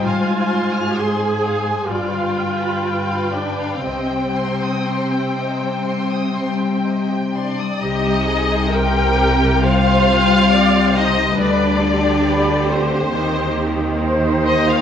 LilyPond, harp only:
\new Staff \with { instrumentName = "Harp" } { \time 4/4 \key c \minor \tempo 4 = 66 <aes, c' c''>16 aes16 c'16 f'16 c''16 f'16 c'16 aes16 g,16 d16 d'16 g'16 b'16 g'16 d'16 d16 | c16 g16 ees'16 g'16 c''16 g'16 ees'16 g16 c16 ees'16 g16 g'16 c''16 g'16 ees'16 g16 | c16 g16 ees'16 g'16 c''16 g'16 ees'16 g16 c16 ees'16 g16 g'16 c''16 g'16 ees'16 g16 | d16 d'16 f'16 g'16 b'16 g'16 f'16 d'16 ees16 c'16 ees'16 g'16 ees'16 g'16 ees'16 c'16 | }